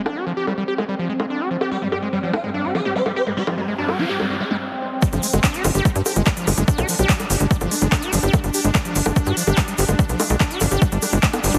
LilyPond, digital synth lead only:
\new Staff \with { instrumentName = "Digital synth lead" } { \clef bass \time 4/4 \tempo 4 = 145 << { r1 | g'8 r4 f'8 r8 aes'8 c''8 c''8 | g'8 r4 f'8 r8 aes'8 r4 | r1 |
r1 | r1 | r1 | } \\ { r1 | r16 g16 g16 r16 g16 g16 r16 g16 g16 g16 r16 g16 r16 g16 r16 g16 | r16 g16 g16 r16 g16 g16 r16 g16 g16 g16 r16 g16 r4 | r1 |
r1 | r1 | r1 | } >> }